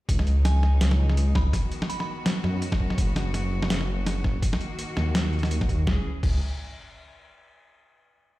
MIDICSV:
0, 0, Header, 1, 5, 480
1, 0, Start_track
1, 0, Tempo, 361446
1, 116, Time_signature, 4, 2, 24, 8
1, 11143, End_track
2, 0, Start_track
2, 0, Title_t, "Synth bell"
2, 0, Program_c, 0, 98
2, 596, Note_on_c, 0, 80, 86
2, 1274, Note_off_c, 0, 80, 0
2, 1797, Note_on_c, 0, 83, 92
2, 2091, Note_off_c, 0, 83, 0
2, 2516, Note_on_c, 0, 83, 92
2, 2604, Note_off_c, 0, 83, 0
2, 2653, Note_on_c, 0, 83, 75
2, 2718, Note_off_c, 0, 83, 0
2, 11143, End_track
3, 0, Start_track
3, 0, Title_t, "Cello section"
3, 0, Program_c, 1, 48
3, 116, Note_on_c, 1, 63, 90
3, 117, Note_on_c, 1, 49, 81
3, 118, Note_on_c, 1, 56, 70
3, 2016, Note_off_c, 1, 63, 0
3, 2017, Note_off_c, 1, 49, 0
3, 2018, Note_off_c, 1, 56, 0
3, 2038, Note_on_c, 1, 51, 74
3, 2038, Note_on_c, 1, 66, 90
3, 2039, Note_on_c, 1, 59, 72
3, 3937, Note_off_c, 1, 51, 0
3, 3960, Note_on_c, 1, 49, 76
3, 5838, Note_off_c, 1, 66, 0
3, 5839, Note_off_c, 1, 59, 0
3, 5858, Note_off_c, 1, 49, 0
3, 5874, Note_on_c, 1, 51, 79
3, 5875, Note_on_c, 1, 58, 73
3, 5875, Note_on_c, 1, 66, 86
3, 7776, Note_off_c, 1, 51, 0
3, 7776, Note_off_c, 1, 58, 0
3, 7776, Note_off_c, 1, 66, 0
3, 7794, Note_on_c, 1, 52, 74
3, 7794, Note_on_c, 1, 68, 79
3, 7795, Note_on_c, 1, 61, 66
3, 8018, Note_off_c, 1, 52, 0
3, 8018, Note_off_c, 1, 61, 0
3, 8018, Note_off_c, 1, 68, 0
3, 11143, End_track
4, 0, Start_track
4, 0, Title_t, "Detuned saw bass"
4, 0, Program_c, 2, 39
4, 115, Note_on_c, 2, 37, 98
4, 1059, Note_off_c, 2, 37, 0
4, 1077, Note_on_c, 2, 37, 95
4, 1780, Note_off_c, 2, 37, 0
4, 1796, Note_on_c, 2, 37, 102
4, 2019, Note_off_c, 2, 37, 0
4, 3237, Note_on_c, 2, 42, 95
4, 3940, Note_off_c, 2, 42, 0
4, 3955, Note_on_c, 2, 30, 97
4, 4899, Note_off_c, 2, 30, 0
4, 4917, Note_on_c, 2, 30, 100
4, 5620, Note_off_c, 2, 30, 0
4, 5635, Note_on_c, 2, 30, 101
4, 5859, Note_off_c, 2, 30, 0
4, 6598, Note_on_c, 2, 39, 95
4, 7540, Note_off_c, 2, 39, 0
4, 7555, Note_on_c, 2, 39, 97
4, 7779, Note_off_c, 2, 39, 0
4, 7795, Note_on_c, 2, 37, 102
4, 7942, Note_off_c, 2, 37, 0
4, 8276, Note_on_c, 2, 37, 100
4, 8499, Note_off_c, 2, 37, 0
4, 11143, End_track
5, 0, Start_track
5, 0, Title_t, "Drums"
5, 115, Note_on_c, 9, 36, 110
5, 117, Note_on_c, 9, 42, 89
5, 248, Note_off_c, 9, 36, 0
5, 250, Note_off_c, 9, 42, 0
5, 254, Note_on_c, 9, 40, 54
5, 357, Note_on_c, 9, 42, 38
5, 387, Note_off_c, 9, 40, 0
5, 490, Note_off_c, 9, 42, 0
5, 598, Note_on_c, 9, 40, 84
5, 598, Note_on_c, 9, 42, 73
5, 731, Note_off_c, 9, 40, 0
5, 731, Note_off_c, 9, 42, 0
5, 837, Note_on_c, 9, 40, 55
5, 970, Note_off_c, 9, 40, 0
5, 1076, Note_on_c, 9, 38, 123
5, 1076, Note_on_c, 9, 42, 82
5, 1209, Note_off_c, 9, 38, 0
5, 1209, Note_off_c, 9, 42, 0
5, 1213, Note_on_c, 9, 40, 87
5, 1346, Note_off_c, 9, 40, 0
5, 1454, Note_on_c, 9, 40, 54
5, 1558, Note_on_c, 9, 42, 71
5, 1587, Note_off_c, 9, 40, 0
5, 1691, Note_off_c, 9, 42, 0
5, 1795, Note_on_c, 9, 36, 107
5, 1799, Note_on_c, 9, 40, 84
5, 1928, Note_off_c, 9, 36, 0
5, 1931, Note_off_c, 9, 40, 0
5, 2035, Note_on_c, 9, 36, 117
5, 2038, Note_on_c, 9, 40, 57
5, 2038, Note_on_c, 9, 42, 88
5, 2168, Note_off_c, 9, 36, 0
5, 2171, Note_off_c, 9, 40, 0
5, 2171, Note_off_c, 9, 42, 0
5, 2278, Note_on_c, 9, 42, 38
5, 2411, Note_off_c, 9, 42, 0
5, 2417, Note_on_c, 9, 40, 77
5, 2519, Note_on_c, 9, 42, 71
5, 2549, Note_off_c, 9, 40, 0
5, 2652, Note_off_c, 9, 42, 0
5, 2657, Note_on_c, 9, 40, 53
5, 2790, Note_off_c, 9, 40, 0
5, 2999, Note_on_c, 9, 38, 127
5, 2999, Note_on_c, 9, 40, 84
5, 2999, Note_on_c, 9, 42, 86
5, 3131, Note_off_c, 9, 38, 0
5, 3131, Note_off_c, 9, 40, 0
5, 3131, Note_off_c, 9, 42, 0
5, 3240, Note_on_c, 9, 40, 53
5, 3373, Note_off_c, 9, 40, 0
5, 3478, Note_on_c, 9, 42, 73
5, 3611, Note_off_c, 9, 42, 0
5, 3613, Note_on_c, 9, 36, 108
5, 3616, Note_on_c, 9, 40, 74
5, 3715, Note_off_c, 9, 36, 0
5, 3715, Note_on_c, 9, 36, 62
5, 3749, Note_off_c, 9, 40, 0
5, 3848, Note_off_c, 9, 36, 0
5, 3855, Note_on_c, 9, 40, 52
5, 3955, Note_on_c, 9, 36, 116
5, 3958, Note_on_c, 9, 42, 81
5, 3988, Note_off_c, 9, 40, 0
5, 4088, Note_off_c, 9, 36, 0
5, 4091, Note_off_c, 9, 42, 0
5, 4198, Note_on_c, 9, 40, 78
5, 4198, Note_on_c, 9, 42, 37
5, 4330, Note_off_c, 9, 40, 0
5, 4330, Note_off_c, 9, 42, 0
5, 4437, Note_on_c, 9, 40, 55
5, 4437, Note_on_c, 9, 42, 71
5, 4569, Note_off_c, 9, 40, 0
5, 4569, Note_off_c, 9, 42, 0
5, 4814, Note_on_c, 9, 40, 80
5, 4917, Note_on_c, 9, 38, 127
5, 4917, Note_on_c, 9, 42, 85
5, 4947, Note_off_c, 9, 40, 0
5, 5050, Note_off_c, 9, 38, 0
5, 5050, Note_off_c, 9, 42, 0
5, 5056, Note_on_c, 9, 40, 51
5, 5188, Note_off_c, 9, 40, 0
5, 5398, Note_on_c, 9, 40, 78
5, 5398, Note_on_c, 9, 42, 68
5, 5531, Note_off_c, 9, 40, 0
5, 5531, Note_off_c, 9, 42, 0
5, 5636, Note_on_c, 9, 36, 105
5, 5637, Note_on_c, 9, 40, 51
5, 5768, Note_off_c, 9, 36, 0
5, 5770, Note_off_c, 9, 40, 0
5, 5876, Note_on_c, 9, 36, 117
5, 5878, Note_on_c, 9, 42, 79
5, 6009, Note_off_c, 9, 36, 0
5, 6011, Note_off_c, 9, 42, 0
5, 6016, Note_on_c, 9, 40, 74
5, 6118, Note_on_c, 9, 42, 37
5, 6148, Note_off_c, 9, 40, 0
5, 6250, Note_off_c, 9, 42, 0
5, 6356, Note_on_c, 9, 42, 70
5, 6489, Note_off_c, 9, 42, 0
5, 6597, Note_on_c, 9, 40, 79
5, 6730, Note_off_c, 9, 40, 0
5, 6838, Note_on_c, 9, 38, 127
5, 6838, Note_on_c, 9, 40, 50
5, 6838, Note_on_c, 9, 42, 81
5, 6971, Note_off_c, 9, 38, 0
5, 6971, Note_off_c, 9, 40, 0
5, 6971, Note_off_c, 9, 42, 0
5, 7077, Note_on_c, 9, 42, 16
5, 7155, Note_off_c, 9, 42, 0
5, 7155, Note_on_c, 9, 42, 21
5, 7214, Note_on_c, 9, 40, 76
5, 7236, Note_off_c, 9, 42, 0
5, 7236, Note_on_c, 9, 42, 30
5, 7318, Note_off_c, 9, 42, 0
5, 7318, Note_on_c, 9, 42, 66
5, 7346, Note_off_c, 9, 40, 0
5, 7450, Note_off_c, 9, 42, 0
5, 7452, Note_on_c, 9, 36, 112
5, 7455, Note_on_c, 9, 40, 49
5, 7555, Note_off_c, 9, 36, 0
5, 7555, Note_on_c, 9, 36, 63
5, 7559, Note_on_c, 9, 42, 37
5, 7588, Note_off_c, 9, 40, 0
5, 7688, Note_off_c, 9, 36, 0
5, 7692, Note_off_c, 9, 42, 0
5, 7795, Note_on_c, 9, 36, 105
5, 7799, Note_on_c, 9, 38, 92
5, 7928, Note_off_c, 9, 36, 0
5, 7932, Note_off_c, 9, 38, 0
5, 8275, Note_on_c, 9, 36, 113
5, 8279, Note_on_c, 9, 49, 95
5, 8408, Note_off_c, 9, 36, 0
5, 8412, Note_off_c, 9, 49, 0
5, 11143, End_track
0, 0, End_of_file